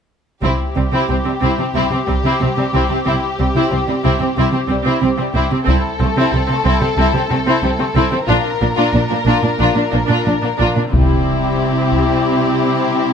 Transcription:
0.42 double bass section C2, cello section C3, viola section C4, violin section E4 G4, taiko
0.75 double bass section C2, cello section C3, violin section G3, viola section C4
0.92 cello section C3, viola section C4, violin section E4
1.09 double bass section C2, cello section C3, viola section C4, violin section C4
1.25 cello section C3, violin section G3, viola section C4
1.41 double bass section C2, cello section C3, viola section C4, violin section E4
1.59 cello section C3, viola section C4, violin section C4
1.74 double bass section C2, cello section C3, viola section C4, violin section E4
1.91 cello section C3, viola section C4, violin section C4
2.07 double bass section C2, cello section C3, violin section G3, viola section C4
2.23 cello section C3, viola section C4, violin section E4
2.40 double bass section C2, cello section C3, viola section C4, violin section C4
2.57 cello section C3, violin section G3, viola section C4
2.73 double bass section C2, cello section C3, viola section C4, violin section E4
2.89 cello section C3, violin section C4, viola section C4
3.06 double bass section C2, cello section C3, viola section C4, violin section E4
3.38 double bass section C2, cello section C3, violin section G3, viola section C4
3.55 cello section C3, viola section C4, violin section E4
3.71 double bass section C2, cello section C3, violin section C4, viola section C4
3.87 cello section C3, violin section G3, viola section C4
4.04 double bass section C2, cello section C3, viola section C4, violin section E4
4.19 cello section C3, viola section C4, violin section C4
4.36 double bass section C2, cello section C3, viola section C4, violin section E4
4.52 cello section C3, viola section C4, violin section C4
4.68 double bass section C2, cello section C3, violin section G3, viola section C4
4.84 cello section C3, viola section C4, violin section E4
5.01 double bass section C2, cello section C3, viola section C4, violin section C4
5.18 cello section C3, violin section G3, viola section C4
5.34 double bass section C2, cello section C3, viola section C4, violin section E4
5.51 cello section C3, viola section C4, violin section C4
5.65 double bass section C2, cello section C3, viola section C4, violin section E4 A4, taiko
5.99 double bass section C2, cello section C3, viola section C4
6.04 violin section A3
6.16 cello section C3, viola section C4, violin section E4
6.31 double bass section C2, cello section C3, viola section C4
6.36 violin section C4
6.48 cello section C3, viola section C4
6.52 violin section A3
6.64 double bass section C2, cello section C3, viola section C4, violin section E4
6.80 cello section C3, viola section C4, violin section C4
6.96 double bass section C2, cello section C3, viola section C4, violin section E4
7.13 cello section C3, viola section C4, violin section C4
7.30 double bass section C2, cello section C3, violin section A3, viola section C4
7.46 cello section C3, viola section C4, violin section E4
7.62 double bass section C2, cello section C3, viola section C4, violin section C4
7.79 cello section C3, violin section A3, viola section C4
7.95 double bass section C2, cello section C3, viola section C4, violin section E4
8.11 cello section C3, violin section C4, viola section C4
8.27 double bass section A#1, cello section A#2, viola section D4, violin section F4 A#4
8.61 double bass section A#1, cello section A#2, violin section A#3, viola section D4
8.76 cello section A#2, viola section D4, violin section F4
8.93 double bass section A#1, cello section A#2, violin section D4, viola section D4
9.10 cello section A#2, violin section A#3, viola section D4
9.26 double bass section A#1, cello section A#2, viola section D4, violin section F4
9.43 cello section A#2, viola section D4, violin section D4
9.59 double bass section A#1, cello section A#2, viola section D4, violin section F4
9.74 cello section A#2, viola section D4, violin section D4
9.91 double bass section A#1, cello section A#2, violin section A#3, viola section D4
10.07 cello section A#2, viola section D4, violin section F4
10.25 double bass section A#1, cello section A#2, viola section D4, violin section D4
10.42 cello section A#2, violin section A#3, viola section D4
10.57 double bass section A#1, cello section A#2, viola section D4, violin section F4
10.75 cello section A#2, viola section D4, violin section D4
10.91 double bass section C2, cello section C3, french horn section G3 E4, viola section C4, violin section E4 G4, taiko, impact
11.92 taiko

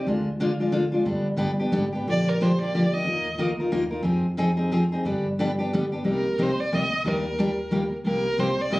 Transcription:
0.06 upright bass D2, steel-string acoustic guitar D3 G#3 D4 F4
0.40 steel-string acoustic guitar D3 G#3 D4 F4
0.60 steel-string acoustic guitar G#3 D4 F4
0.72 steel-string acoustic guitar D3 G#3 D4 F4
0.92 steel-string acoustic guitar G#3 D4 F4
1.05 upright bass G1, steel-string acoustic guitar D3 G3 B3 D4 G4
1.37 upright bass G1, steel-string acoustic guitar D3 G3 B3 D4 G4
1.60 steel-string acoustic guitar B3 D4 G4
1.72 upright bass G#1, steel-string acoustic guitar D3 G3 B3 D4 G4
1.93 steel-string acoustic guitar B3 D4 G4
2.07 upright bass A#1, steel-string acoustic guitar D3 F3 A#3 D4 G4, violin D5
2.29 violin A#4
2.41 steel-string acoustic guitar D3 F3 A#3 D4 G4, violin C5
2.62 steel-string acoustic guitar A#3 D4 G4, violin D5
2.74 steel-string acoustic guitar D3 F3 A#3 D4 G4
2.94 steel-string acoustic guitar A#3 D4 G4, violin D#5
3.05 upright bass D#2, steel-string acoustic guitar D#3 A#3 D#4 F4 A#4
3.38 upright bass D2, steel-string acoustic guitar D#3 A#3 D#4 F4 A#4
3.60 steel-string acoustic guitar D#4 F4 A#4
3.72 upright bass D#2, steel-string acoustic guitar D#3 A#3 D#4 F4 A#4
3.91 steel-string acoustic guitar D#4 F4 A#4
4.03 upright bass F2, steel-string acoustic guitar F3 C4 D#4 G#4
4.37 steel-string acoustic guitar F3 C4 D#4 G#4
4.57 steel-string acoustic guitar C4 D#4 G#4
4.72 steel-string acoustic guitar F3 C4 D#4 G#4
4.92 steel-string acoustic guitar C4 D#4 G#4
5.05 upright bass G2, steel-string acoustic guitar D3 G3 B3 D4 G4
5.39 steel-string acoustic guitar D3 G3 B3 D4 G4
5.59 steel-string acoustic guitar B3 D4 G4
5.73 steel-string acoustic guitar D3 G3 B3 D4 G4
5.92 steel-string acoustic guitar B3 D4 G4
6.04 upright bass C2, steel-string acoustic guitar C3 G3 A#3 D#4 G4
6.09 violin A#4
6.38 upright bass C2, steel-string acoustic guitar C3 G3 A#3 D#4 G4
6.42 violin C5
6.60 violin D5
6.72 upright bass D2, steel-string acoustic guitar C3 G3 A#3 D#4 G4, violin D#5
7.04 upright bass D#2, steel-string acoustic guitar D#3 G3 A#3 D4 G4, violin A#4
7.39 steel-string acoustic guitar D#3 G3 A#3 D4 G4
7.71 steel-string acoustic guitar D#3 G3 A#3 D4 G4
8.05 upright bass C2, steel-string acoustic guitar C3 G3 A#3 D#4 G4, violin A#4
8.38 steel-string acoustic guitar C3 G3 A#3 D#4 G4, violin C5
8.61 violin D5
8.70 steel-string acoustic guitar C3 G3 A#3 D#4 G4, violin D#5

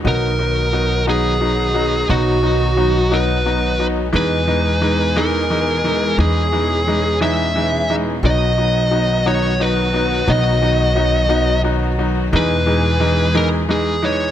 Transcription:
0.03 upright bass B1, string section B2 D#3 F#3 D#4 F#4, grand piano F#3 B3 D#4
0.08 lead electric guitar A#4
0.39 grand piano F#3 B3 D#4
0.73 grand piano F#3 B3 D#4
1.07 grand piano F#3 B3 D#4, lead electric guitar G#4
1.41 grand piano F#3 B3 D#4
1.74 grand piano F#3 B3 D#4
2.09 upright bass B1, grand piano F#3 B3 D#4, lead electric guitar F#4
2.43 grand piano F#3 B3 D#4
2.77 grand piano F#3 B3 D#4
3.11 grand piano F#3 B3 D#4, lead electric guitar B4
3.46 grand piano F#3 B3 D#4
3.80 grand piano F#3 B3 D#4
4.12 upright bass E2, grand piano E3 G#3 D#4, string section E3 G#3 D#4 G#4, lead electric guitar B4
4.47 grand piano E3 G#3 D#4
4.81 grand piano E3 G#3 D#4
5.16 grand piano E3 G#3 D#4, lead electric guitar A#4
5.50 grand piano E3 G#3 D#4
5.84 grand piano E3 G#3 D#4
6.18 upright bass E2, grand piano E3 G#3 D#4, string section C#4, lead electric guitar G#4
6.53 grand piano E3 G#3 D#4
6.87 grand piano E3 G#3 D#4
7.21 grand piano E3 G#3 D#4, lead electric guitar E5
7.56 grand piano E3 G#3 D#4
7.90 grand piano E3 G#3 D#4
8.22 upright bass B1, string section D#3 F#3 D#4 F#4, grand piano F#3 B3 D#4, lead electric guitar D#5
8.58 grand piano F#3 B3 D#4
8.91 grand piano F#3 B3 D#4
9.26 grand piano F#3 B3 D#4, lead electric guitar C#5
9.60 grand piano F#3 B3 D#4, lead electric guitar B4
9.94 grand piano F#3 B3 D#4
10.27 upright bass B1, grand piano F#3 B3 D#4, lead electric guitar D#5
10.62 grand piano F#3 B3 D#4
10.95 grand piano F#3 B3 D#4
11.29 grand piano F#3 B3 D#4
11.64 grand piano F#3 B3 D#4
11.99 grand piano F#3 B3 D#4
12.31 upright bass E2, string section B2 E3 G#3 G#4, grand piano E3 G#3 D#4
12.36 lead electric guitar B4
12.66 grand piano E3 G#3 D#4
13.00 grand piano E3 G#3 D#4
13.34 grand piano E3 G#3 D#4, lead electric guitar A#4
13.68 grand piano E3 G#3 D#4, lead electric guitar G#4
14.02 grand piano E3 G#3 D#4, lead electric guitar C#5

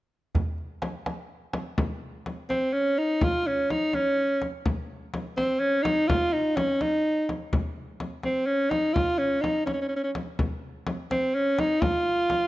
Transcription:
0.35 tombak dum, frame drum
0.58 tombak ka
0.82 tombak tek, frame drum
1.06 tombak tek, frame drum
1.53 tombak tek, frame drum
1.78 frame drum
2.26 frame drum
2.50 alto saxophone C4, frame drum
2.73 alto saxophone C#4
2.98 alto saxophone D#4
3.21 alto saxophone F4, frame drum
3.47 alto saxophone C#4
3.70 alto saxophone D#4, frame drum
3.93 alto saxophone C#4, frame drum
4.42 frame drum
4.66 frame drum
5.14 frame drum
5.37 alto saxophone C4, frame drum
5.60 alto saxophone C#4
5.83 alto saxophone D#4, frame drum
6.08 alto saxophone F4, frame drum
6.33 alto saxophone D#4
6.56 alto saxophone C#4, frame drum
6.81 alto saxophone D#4, frame drum
7.29 frame drum
7.53 frame drum
8.00 frame drum
8.23 alto saxophone C4, frame drum
8.46 alto saxophone C#4
8.70 alto saxophone D#4, frame drum
8.94 alto saxophone F4, frame drum
9.18 alto saxophone C#4
9.41 alto saxophone D#4, frame drum
9.66 alto saxophone C#4, frame drum
9.74 alto saxophone C#4
9.81 alto saxophone C#4
9.89 alto saxophone C#4
9.96 alto saxophone C#4
10.04 alto saxophone C#4
10.15 frame drum
10.39 frame drum
10.87 frame drum
11.11 alto saxophone C4, frame drum
11.35 alto saxophone C#4
11.59 alto saxophone D#4, frame drum
11.81 alto saxophone F4, frame drum
12.30 frame drum

